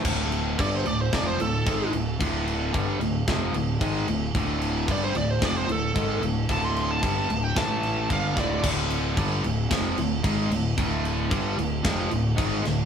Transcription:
<<
  \new Staff \with { instrumentName = "Lead electric guitar" } { \time 4/4 \key d \minor \tempo 4 = 112 r4 d''16 c''16 d''16 c''16 d''16 c''16 a'4 r8 | r1 | r4 d''16 c''16 d''16 c''16 d''16 c''16 a'4 r8 | a''16 c'''8 a''4 g''16 a''4 f''8 d''8 |
r1 | r1 | }
  \new Staff \with { instrumentName = "Distorted electric guitar" } { \clef bass \time 4/4 \key d \minor <d, a, d>4 <g, d g>8 <d, a,>8 <f, c f>8 <d, a,>8 <gis, ees gis>8 <d, a,>8 | <d, a, d>4 <g, d g>8 <d, a,>8 <f, c f>8 <d, a,>8 <gis, ees gis>8 <d, a,>8 | <d, a, d>4 <g, d g>8 <d, a,>8 <f, c f>8 <d, a,>8 <gis, ees gis>8 <d, a,>8 | <d, a, d>4 <g, d g>8 <d, a,>8 <a, e a>4 <g, d g>8 <d, a, d>8 |
<d, a, d>4 <g, d g>8 <d, a,>8 <f, c f>8 <d, a,>8 <gis, ees gis>8 <d, a,>8 | <d, a, d>4 <g, d g>8 <d, a,>8 <f, c f>8 <d, a,>8 <gis, ees gis>8 <d, a,>8 | }
  \new Staff \with { instrumentName = "Picked electric bass" } { \clef bass \time 4/4 \key d \minor d,,4 g,,8 d,,8 f,,8 d,,8 gis,,8 d,,8 | d,,4 g,,8 d,,8 f,,8 d,,8 gis,,8 d,,8 | d,,4 g,,8 d,,8 f,,8 d,,8 gis,,8 d,,8 | d,,4 g,,8 d,,8 a,,4 g,,8 d,,8 |
d,,4 g,,8 d,,8 f,,8 d,,8 gis,,8 d,,8 | d,,4 g,,8 d,,8 f,,8 d,,8 gis,,8 d,,8 | }
  \new DrumStaff \with { instrumentName = "Drums" } \drummode { \time 4/4 <cymc bd>8 cymc8 <cymc bd>8 cymc8 <cymc bd sn>8 cymc8 <cymc bd>8 cymc8 | <cymc bd>8 cymc8 <cymc bd>8 cymc8 <cymc bd sn>8 cymc8 <cymc bd>8 cymc8 | <cymc bd>8 cymc8 <cymc bd>8 cymc8 <cymc bd sn>8 cymc8 <cymc bd>8 cymc8 | <cymc bd>8 cymc8 <cymc bd>8 cymc8 <cymc bd sn>8 cymc8 <cymc bd>8 <cymc bd sn>8 |
<cymc bd>8 cymc8 <cymc bd>8 cymc8 <cymc bd sn>8 cymc8 <cymc bd>8 cymc8 | <cymc bd>8 cymc8 <cymc bd>8 cymc8 <cymc bd sn>8 cymc8 <cymc bd>8 <cymc sn>8 | }
>>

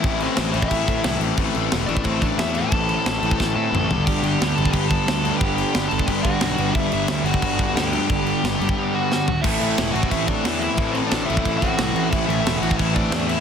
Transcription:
<<
  \new Staff \with { instrumentName = "Lead electric guitar" } { \time 4/4 \key a \dorian \tempo 4 = 179 <e' e''>8 <c' c''>4 <e' e''>2 r8 | r4. <d' d''>8 <c' c''>8 <d' d''>8 <e' e''>8 <a' a''>8~ | <a' a''>2~ <a' a''>8 <a' a''>4. | <g' g''>8 <g' g''>4 <a' a''>8 <g' g''>8 <a' a''>4. |
<g' g''>8 <g' g''>4 <a' a''>8 <g' g''>8 <fis' fis''>4. | <e' e''>8 <e' e''>4 <fis' fis''>4. <g' g''>4 | <g' g''>2~ <g' g''>8 <fis' fis''>4. | <e' e''>8 <e' e''>4 <fis' fis''>8 <e' e''>8 <d' d''>4 <e' e''>8~ |
<e' e''>8 <c' c''>8 <d' d''>8 <e' e''>4 <fis' fis''>4. | <e' e''>8 <e' e''>4 <fis' fis''>8 <e' e''>8 <d' d''>4 <e' e''>8 | }
  \new Staff \with { instrumentName = "Overdriven electric guitar" } { \time 4/4 \key a \dorian <a, e a c' e'>2~ <a, e a c' e'>8 <a, e a c' e'>8 <a, e a c' e'>4 | <a, e a c' e'>2~ <a, e a c' e'>8 <a, e a c' e'>8 <a, e a c' e'>4 | <a, e a c' e'>2~ <a, e a c' e'>8 <a, e a c' e'>8 <a, e a c' e'>8 <g, d g b d'>8~ | <g, d g b d'>2 <g, d g b d'>8 <g, d g b d'>4 <g, d g b d'>8~ |
<g, d g b d'>2 <g, d g b d'>8 <g, d g b d'>4 <g, d g b d'>8~ | <g, d g b d'>2 <g, d g b d'>8 <g, d g b d'>4 <g, d g b d'>8~ | <g, d g b d'>2 <g, d g b d'>8 <g, d g b d'>4 r8 | <a, e a c' e'>2~ <a, e a c' e'>8 <a, e a c' e'>8 <a, e a c' e'>4 |
<a, e a c' e'>2~ <a, e a c' e'>8 <a, e a c' e'>8 <a, e a c' e'>4 | <a, e a c' e'>2~ <a, e a c' e'>8 <a, e a c' e'>8 <a, e a c' e'>4 | }
  \new Staff \with { instrumentName = "Distorted electric guitar" } { \clef bass \time 4/4 \key a \dorian <a, e a>4. <a, e a>2~ <a, e a>8 | <a, e a>4. <a, e a>2~ <a, e a>8 | <a, e a>4. <a, e a>2 <g, d g>8~ | <g, d g>4 <g, d g>2~ <g, d g>8 <g, d g>8~ |
<g, d g>4 <g, d g>2~ <g, d g>8 <g, d g>8~ | <g, d g>4 <g, d g>2~ <g, d g>8 <g, d g>8~ | <g, d g>4 <g, d g>2~ <g, d g>8 r8 | <a, e a>4. <a, e a>2~ <a, e a>8 |
<a, e a>4. <a, e a>2~ <a, e a>8 | <a, e a>4. <a, e a>2~ <a, e a>8 | }
  \new Staff \with { instrumentName = "Overdriven electric guitar" } { \clef bass \time 4/4 \key a \dorian r1 | r1 | r1 | <g, d g>4. <g, d g>4. <g, d g>4 |
<g, d g>4. <g, d g>4. <g, d g>4 | <g, d g>4. <g, d g>4. <g, d g>4 | <g, d g>4. <g, d g>4. <g, d g>4 | <a, e a>4. <a, e a>4. <a, e a>4 |
<a, e a>4. <a, e a>4. <a, e a>4 | <a, e a>4. <a, e a>4. <a, e a>4 | }
  \new Staff \with { instrumentName = "Picked electric bass" } { \clef bass \time 4/4 \key a \dorian a,,4 a,,8 a,,8 a,,8 a,8 c,8 a,,8 | a,,8 a,,8 e,,8 a,,8 a,,4 e,4 | a,,4 a,,8 a,,8 a,,8 a,8 a,,8 g,,8 | g,,8 g,,8 d,8 g,,8 g,,4 d,4 |
g,,4 g,,8 g,,8 g,,8 g,8 b,,8 g,,8 | g,,8 g,,8 d,8 g,,8 g,,4 d,4 | g,,4 g,,8 g,,8 r2 | a,,8 a,,8 e,,8 a,,8 a,,4 e,4 |
a,,4 a,,8 a,,8 a,,8 a,8 c,8 a,,8 | a,,8 a,,8 e,,8 a,,8 a,,4 e,4 | }
  \new DrumStaff \with { instrumentName = "Drums" } \drummode { \time 4/4 <cymc bd>8 cymc8 <cymc sn>8 cymc16 bd16 <cymc bd>8 <cymc bd>8 <cymc sn>8 cymc8 | <cymc bd>8 cymc8 <cymc sn>8 cymc16 bd16 <cymc bd>8 <cymc bd>8 <cymc sn>8 cymc8 | <cymc bd>8 cymc8 <cymc sn>8 cymc16 bd16 <bd sn>4 toml8 tomfh8 | <cymc bd>8 cymc8 <cymc sn>8 cymc16 bd16 <cymc bd>8 <cymc bd>8 <cymc sn>8 cymc8 |
<cymc bd>8 cymc8 <cymc sn>8 cymc16 bd16 <cymc bd>8 <cymc bd>8 <cymc sn>8 cymc8 | <cymc bd>8 cymc8 <cymc sn>8 cymc16 bd16 <cymc bd>8 <cymc bd>8 <cymc sn>8 cymc8 | <cymc bd>8 cymc8 <cymc sn>8 cymc16 bd16 r4 sn8 tomfh8 | <cymc bd>8 cymc8 <cymc sn>8 cymc16 bd16 <cymc bd>8 <cymc bd>8 <cymc sn>8 cymc8 |
<cymc bd>8 cymc8 <cymc sn>8 cymc16 bd16 <cymc bd>8 <cymc bd>8 <cymc sn>8 cymc8 | <cymc bd>8 cymc8 <cymc sn>8 cymc16 bd16 <cymc bd>8 <cymc bd>8 <cymc sn>8 cymc8 | }
>>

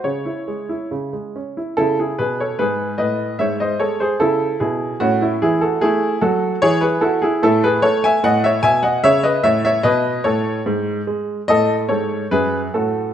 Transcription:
<<
  \new Staff \with { instrumentName = "Grand piano" } { \time 2/4 \key cis \minor \tempo 4 = 74 cis''4 r4 | <e' a'>16 <e' gis'>16 <gis' b'>16 <a' cis''>16 <gis' b'>8 <b' dis''>8 | <cis'' e''>16 <bis' dis''>16 <a' cis''>16 <gis' bis'>16 <e' a'>8 <e' gis'>8 | <cis' fis'>16 <cis' e'>16 <e' gis'>16 <fis' a'>16 <e' gis'>8 <fis' a'>8 |
<gis' cis''>16 <gis' b'>16 <fis' a'>16 <e' gis'>16 <e' a'>16 <gis' b'>16 <a' cis''>16 <e'' gis''>16 | \key fis \dorian <dis'' fis''>16 <cis'' e''>16 <e'' gis''>16 <dis'' fis''>16 <cis'' e''>16 <b' dis''>16 <cis'' e''>16 <cis'' e''>16 | <b' dis''>8 <a' cis''>8 r4 | <a' dis''>8 <a' cis''>8 <gis' b'>8 <fis' a'>8 | }
  \new Staff \with { instrumentName = "Grand piano" } { \clef bass \time 2/4 \key cis \minor cis16 e'16 gis16 e'16 cis16 gis16 cis'16 e'16 | cis8 b,8 gis,8 a,8 | gis,8 gis8 cis8 b,8 | a,8 e8 a8 fis8 |
e8 e'8 a,8 a8 | \key fis \dorian a,8 b,8 cis8 a,8 | b,8 a,8 gis,8 gis8 | a,8 gis,8 fis,8 a,8 | }
>>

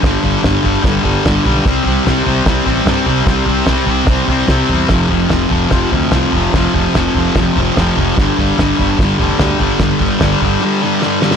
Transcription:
<<
  \new Staff \with { instrumentName = "Distorted electric guitar" } { \clef bass \time 4/4 \key f \lydian \tempo 4 = 147 <g, d g>8 <d g>8 <g, d g>8 <d g>8 <g, d g>8 <g, d g>8 <g, d g>8 <d g>8 | <c g c'>8 <g c'>8 <c g c'>8 <g c'>8 <c g c'>8 <c g c'>8 <c g c'>8 <g c'>8 | <c g c'>8 <g c'>8 <c g c'>8 <g c'>8 <c g c'>8 <c g c'>8 <c g c'>8 <g c'>8 | <f, c f>8 <c f>8 <f, c f>8 <c f>8 <f, c f>8 <f, c f>8 <f, c f>8 <c f>8 |
<f, c f>8 <c f>8 <f, c f>8 <c f>8 <f, c f>8 <f, c f>8 <f, c f>8 <c f>8 | <g, d g>8 <d g>8 <g, d g>8 <d g>8 <g, d g>8 <g, d g>8 <g, d g>8 <d g>8 | <g, d g>8 <d g>8 <g, d g>8 <d g>8 <g, d g>8 <g, d g>8 <g, d g>8 <d g>8 | }
  \new Staff \with { instrumentName = "Fingered electric bass" } { \clef bass \time 4/4 \key f \lydian g,,8 g,,8 g,,8 g,,8 g,,8 g,,8 g,,8 b,,8 | c,8 c,8 c,8 c,8 c,8 a,,8 g,8 c,8 | c,8 c,8 c,8 c,8 c,8 c,8 c,8 e,8 | f,,8 f,,8 f,,8 f,,8 f,,8 d,8 c,8 f,,8 |
f,,8 f,,8 f,,8 f,,8 f,,8 f,,8 f,,8 f,,8 | g,,8 g,,8 g,,8 g,,8 g,,8 f,,8 d,8 g,,8 | g,,8 g,,8 g,,8 g,,8 r2 | }
  \new DrumStaff \with { instrumentName = "Drums" } \drummode { \time 4/4 <bd sn tomfh>8 tomfh8 <sn tomfh>8 tomfh8 <bd sn tomfh>8 tomfh8 <sn tomfh>8 tomfh8 | <bd sn tomfh>8 tomfh8 <sn tomfh>8 tomfh8 <bd sn tomfh>8 tomfh8 <sn tomfh>8 tomfh8 | <bd sn tomfh>8 tomfh8 <sn tomfh>8 tomfh8 <bd sn tomfh>8 tomfh8 <sn tomfh>8 tomfh8 | <bd sn tomfh>8 tomfh8 <sn tomfh>8 tomfh8 <bd sn tomfh>8 tomfh8 <sn tomfh>8 tomfh8 |
<bd sn tomfh>8 tomfh8 <sn tomfh>8 tomfh8 <bd sn tomfh>8 tomfh8 <sn tomfh>8 tomfh8 | <bd sn tomfh>8 tomfh8 <sn tomfh>8 tomfh8 <bd sn tomfh>8 tomfh8 <sn tomfh>8 tomfh8 | <bd sn tomfh>8 tomfh8 <sn tomfh>8 tomfh8 r4 sn8 sn16 sn16 | }
>>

